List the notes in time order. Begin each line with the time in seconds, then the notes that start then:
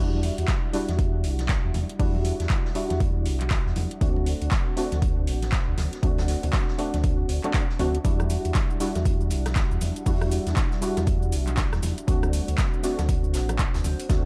Already playing: E2 G3 D4 F#5
0.00 E4 F#4
0.13 high conga
0.23 closed hi-hat, open hi-hat
0.34 G3
0.38 E2, closed hi-hat
0.48 kick, snare, clap, closed hi-hat, high conga
0.73 G3 D4 E4 F#4, snare, closed hi-hat, open hi-hat
0.89 E2, snare, closed hi-hat, high conga
0.99 kick, closed hi-hat
1.24 B1, closed hi-hat, open hi-hat
1.39 snare, closed hi-hat, high conga
1.49 kick, snare, clap, closed hi-hat
1.64 E2
1.74 E2, closed hi-hat, open hi-hat, high conga, low conga
1.89 closed hi-hat
1.99 E2 G3 D4 E4 F#4, kick, closed hi-hat, open hi-hat
2.15 high conga
2.25 closed hi-hat, open hi-hat
2.40 E2, snare, closed hi-hat
2.50 kick, snare, clap, closed hi-hat, high conga
2.65 snare
2.75 G3 D4 E4 F#4, closed hi-hat, open hi-hat
2.90 E2, snare, closed hi-hat, high conga
3.00 kick, closed hi-hat
3.26 B1, closed hi-hat, open hi-hat
3.40 clap, closed hi-hat, high conga
3.50 kick, snare, clap, closed hi-hat
3.66 E2, snare
3.76 E2, closed hi-hat, open hi-hat, high conga, low conga
3.91 closed hi-hat
4.01 D2 A3 C4 D4 F#4, kick, closed hi-hat
4.16 high conga
4.20 C5
4.26 closed hi-hat, open hi-hat
4.41 D2, closed hi-hat
4.51 kick, snare, clap, closed hi-hat, high conga
4.76 A3 C4 D4 F#4, snare, closed hi-hat, open hi-hat
4.92 D2, snare, closed hi-hat, high conga
5.02 kick, closed hi-hat
5.27 A1, closed hi-hat, open hi-hat
5.42 snare, closed hi-hat, high conga
5.52 kick, snare, clap, closed hi-hat
5.68 D2
5.78 D2, snare, closed hi-hat, open hi-hat, high conga, low conga
5.93 snare, closed hi-hat
6.02 D2 A3 C4 D4 F#4, kick, closed hi-hat
6.18 snare, closed hi-hat, high conga
6.28 snare, open hi-hat
6.43 D2, closed hi-hat, low conga
6.53 kick, snare, clap, closed hi-hat, high conga
6.68 snare
6.78 A3 C4 D4 F#4, closed hi-hat, open hi-hat
6.94 D2, snare, closed hi-hat, high conga
7.03 kick, closed hi-hat
7.29 D2, closed hi-hat, open hi-hat
7.44 A3 C4 D4 F#4, clap, closed hi-hat, high conga
7.53 A3 D4 F#4, kick, snare, clap, closed hi-hat
7.70 snare
7.79 D2 A3 C4 D4 F#4, closed hi-hat, open hi-hat, high conga, low conga
7.95 closed hi-hat
8.04 E2 G3 D4 E4 F#4, kick, closed hi-hat, cabasa
8.20 cross-stick, high bongo, high conga, cabasa
8.25 G3
8.30 closed hi-hat, open hi-hat, cabasa
8.45 E2, closed hi-hat, cabasa
8.55 kick, snare, clap, closed hi-hat, high conga, cabasa
8.70 cabasa
8.80 G3 D4 E4 F#4, snare, closed hi-hat, open hi-hat, cabasa
8.95 E2, snare, closed hi-hat, high bongo, high conga, cabasa
9.05 kick, closed hi-hat, cabasa
9.21 cabasa
9.30 B1, closed hi-hat, open hi-hat, cabasa
9.46 cross-stick, snare, closed hi-hat, high bongo, high conga, cabasa
9.55 kick, snare, clap, closed hi-hat, cabasa
9.71 E2, cabasa
9.81 E2, closed hi-hat, open hi-hat, high conga, low conga, cabasa
9.96 closed hi-hat, cabasa
10.06 E2 G3 D4 E4 F#4, kick, closed hi-hat, open hi-hat, cabasa
10.21 cross-stick, high bongo, high conga, cabasa
10.31 closed hi-hat, open hi-hat, cabasa
10.47 E2, snare, closed hi-hat, cabasa
10.56 kick, snare, clap, closed hi-hat, high conga, cabasa
10.72 snare, cabasa
10.81 G3 D4 E4 F#4, closed hi-hat, open hi-hat, cabasa
10.97 E2, snare, closed hi-hat, high bongo, high conga, cabasa
11.06 kick, closed hi-hat, cabasa
11.22 cabasa
11.32 B1, closed hi-hat, open hi-hat, cabasa
11.47 clap, closed hi-hat, high conga, cabasa
11.57 kick, snare, clap, closed hi-hat, cabasa
11.73 E2, cross-stick, snare, cabasa
11.83 E2, closed hi-hat, open hi-hat, high conga, low conga, cabasa
11.98 closed hi-hat, cabasa
12.07 D2 A3 C4 D4 F#4, kick, closed hi-hat, cabasa
12.23 cross-stick, high bongo, high conga, cabasa
12.33 closed hi-hat, open hi-hat, cabasa
12.48 D2, closed hi-hat, cabasa
12.58 kick, snare, clap, closed hi-hat, high conga, cabasa
12.74 C5, cabasa
12.83 A3 C4 D4 F#4, snare, closed hi-hat, open hi-hat, cabasa
12.99 D2, snare, closed hi-hat, high bongo, high conga, cabasa
13.09 kick, closed hi-hat, cabasa
13.24 cabasa
13.33 A1, snare, closed hi-hat, open hi-hat, cabasa
13.49 cross-stick, closed hi-hat, high bongo, high conga, cabasa
13.59 kick, clap, closed hi-hat, cabasa
13.74 D2, snare, closed hi-hat, cabasa
13.84 D2, open hi-hat, high conga, low conga, cabasa
14.00 closed hi-hat, cabasa
14.09 D2 A3 C4 D4 F#4, kick, snare, closed hi-hat, cabasa